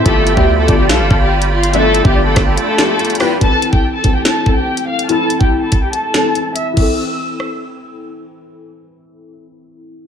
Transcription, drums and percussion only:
0.06 kick loud
0.06 closed hi-hat medium
0.27 closed hi-hat medium
0.37 kick loud
0.68 kick loud
0.68 closed hi-hat medium
0.89 snare loud
0.89 closed hi-hat medium
1.11 kick loud
1.42 closed hi-hat medium
1.63 closed hi-hat medium
1.74 closed hi-hat medium
1.95 closed hi-hat medium
2.05 kick loud
2.36 kick loud
2.36 cross-stick loud
2.36 snare medium
2.36 closed hi-hat medium
2.57 closed hi-hat medium
2.78 snare loud
2.99 closed hi-hat soft
3.05 closed hi-hat soft
3.10 closed hi-hat medium
3.15 closed hi-hat medium
3.20 cross-stick loud
3.20 open hi-hat medium
3.41 kick loud
3.41 closed hi-hat medium
3.62 closed hi-hat medium
3.73 kick loud
4.04 kick loud
4.04 closed hi-hat medium
4.25 snare loud
4.25 closed hi-hat medium
4.46 kick medium
4.77 closed hi-hat medium
4.99 closed hi-hat medium
5.09 closed hi-hat medium
5.30 closed hi-hat medium
5.41 kick loud
5.72 kick medium
5.72 closed hi-hat medium
5.93 closed hi-hat medium
6.14 snare loud
6.35 closed hi-hat medium
6.56 closed hi-hat medium
6.77 kick loud
6.77 crash medium
7.40 cross-stick medium

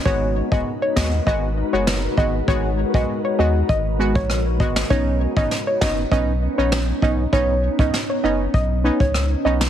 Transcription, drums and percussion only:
0.06 kick loud
0.52 kick loud
0.97 kick loud
0.97 snare loud
1.27 kick medium
1.87 cross-stick medium
1.87 snare loud
2.18 kick medium
2.48 kick loud
2.94 kick loud
3.69 kick medium
4.15 kick loud
4.30 cross-stick medium
4.60 kick loud
4.76 snare medium
4.90 kick loud
5.37 kick loud
5.51 snare medium
5.81 kick loud
5.81 snare loud
6.12 kick medium
6.72 cross-stick medium
6.72 snare loud
7.02 kick medium
7.33 kick loud
7.79 kick loud
7.94 snare medium
8.54 kick medium
9.00 kick loud
9.14 cross-stick medium
9.61 snare loud

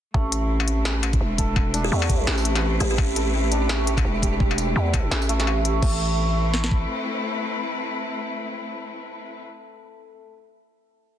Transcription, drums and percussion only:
0.14 kick loud
0.32 closed hi-hat medium
0.60 struck metal medium
0.68 closed hi-hat medium
0.85 snare loud
1.03 closed hi-hat medium
1.03 struck metal medium
1.13 kick loud
1.13 closed hi-hat soft
1.38 kick medium
1.38 closed hi-hat medium
1.56 kick loud
1.56 struck metal soft
1.74 closed hi-hat medium
1.74 tambourine soft
2.02 struck metal medium
2.09 kick loud
2.09 closed hi-hat medium
2.27 snare loud
2.38 tambourine medium
2.45 closed hi-hat medium
2.55 snare soft
2.55 closed hi-hat soft
2.55 struck metal medium
2.81 closed hi-hat medium
2.98 kick loud
2.98 struck metal medium
3.16 closed hi-hat medium
3.52 closed hi-hat medium
3.69 snare loud
3.87 closed hi-hat medium
3.97 kick loud
3.97 closed hi-hat soft
3.97 struck metal medium
4.22 kick medium
4.22 closed hi-hat medium
4.40 kick loud
4.51 struck metal soft
4.58 closed hi-hat medium
4.58 tambourine soft
4.94 kick loud
4.94 closed hi-hat medium
4.94 struck metal medium
5.11 snare loud
5.22 tambourine medium
5.29 closed hi-hat medium
5.40 snare soft
5.40 closed hi-hat soft
5.47 struck metal soft
5.65 closed hi-hat medium
5.82 kick loud
5.82 crash medium
6.54 snare medium
6.64 snare medium
6.71 kick medium

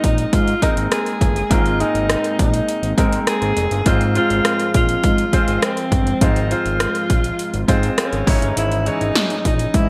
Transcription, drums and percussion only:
0.04 kick medium
0.04 closed hi-hat medium
0.18 closed hi-hat medium
0.33 kick medium
0.33 closed hi-hat medium
0.48 closed hi-hat soft
0.62 kick medium
0.62 closed hi-hat medium
0.77 closed hi-hat medium
0.92 cross-stick loud
0.92 closed hi-hat medium
1.06 closed hi-hat soft
1.21 kick medium
1.21 closed hi-hat medium
1.36 closed hi-hat soft
1.51 kick loud
1.51 closed hi-hat medium
1.66 closed hi-hat soft
1.80 closed hi-hat medium
1.95 closed hi-hat soft
2.10 cross-stick loud
2.10 closed hi-hat medium
2.24 closed hi-hat soft
2.39 kick medium
2.39 closed hi-hat medium
2.54 closed hi-hat medium
2.69 closed hi-hat medium
2.83 closed hi-hat soft
2.98 kick medium
2.98 closed hi-hat medium
3.13 closed hi-hat medium
3.27 cross-stick loud
3.27 closed hi-hat medium
3.42 closed hi-hat soft
3.57 closed hi-hat medium
3.71 closed hi-hat soft
3.86 kick loud
3.86 closed hi-hat loud
4.01 closed hi-hat soft
4.15 closed hi-hat medium
4.30 closed hi-hat soft
4.45 cross-stick loud
4.45 closed hi-hat medium
4.60 closed hi-hat soft
4.74 kick medium
4.74 closed hi-hat medium
4.89 closed hi-hat medium
5.04 kick medium
5.04 closed hi-hat medium
5.18 closed hi-hat soft
5.33 kick medium
5.33 closed hi-hat medium
5.48 closed hi-hat medium
5.62 cross-stick loud
5.62 closed hi-hat medium
5.77 closed hi-hat soft
5.92 kick medium
5.92 closed hi-hat medium
6.07 closed hi-hat soft
6.21 kick loud
6.21 closed hi-hat loud
6.36 closed hi-hat soft
6.51 closed hi-hat medium
6.66 closed hi-hat soft
6.80 cross-stick loud
6.80 closed hi-hat medium
6.95 closed hi-hat soft
7.10 kick medium
7.10 closed hi-hat medium
7.24 closed hi-hat medium
7.39 closed hi-hat medium
7.54 closed hi-hat soft
7.68 kick medium
7.68 closed hi-hat medium
7.83 closed hi-hat medium
7.98 cross-stick loud
7.98 closed hi-hat medium
8.13 closed hi-hat soft
8.27 kick loud
8.27 open hi-hat medium
8.42 closed hi-hat soft
8.57 closed hi-hat loud
8.72 closed hi-hat soft
8.86 closed hi-hat medium
9.01 closed hi-hat soft
9.15 snare loud
9.15 closed hi-hat medium
9.30 closed hi-hat medium
9.45 kick medium
9.45 closed hi-hat medium
9.59 closed hi-hat medium
9.74 kick medium
9.74 closed hi-hat medium

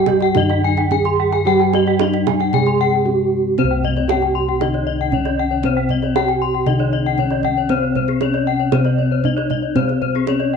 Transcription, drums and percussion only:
0.06 kendang high soft
0.06 kendang low soft
0.20 kendang slap soft
0.35 kendang high soft
0.35 kendang low soft
0.50 kendang slap soft
0.77 kendang slap soft
0.91 kendang low soft
1.05 kendang slap soft
1.32 kendang slap soft
1.59 kendang slap soft
1.73 kendang high soft
1.87 kendang slap soft
1.99 kendang high soft
2.13 kendang slap soft
2.27 kendang high soft
2.27 kendang low soft
2.40 kendang slap soft
2.53 kendang low soft
2.66 kendang slap soft
3.58 kendang low soft
3.84 kendang low soft
3.96 kendang slap soft
4.09 kendang high soft
4.22 kendang slap soft
4.61 kendang high soft
4.74 kendang slap soft
5.12 kendang low soft
5.25 kendang slap soft
5.63 kendang low soft
5.89 kendang low soft
6.02 kendang slap soft
6.16 kendang high soft
6.29 kendang slap soft
6.66 kendang high soft
6.79 kendang slap soft
7.18 kendang low soft
7.30 kendang slap soft
7.43 kendang low soft
7.69 kendang low soft
7.95 kendang low soft
8.08 kendang slap soft
8.21 kendang high soft
8.34 kendang slap soft
8.72 kendang high soft
8.85 kendang slap soft
9.24 kendang low soft
9.38 kendang slap soft
9.50 kendang low soft
9.76 kendang low soft
9.89 kendang slap soft
10.02 kendang low soft
10.15 kendang slap soft
10.27 kendang high soft
10.40 kendang slap soft

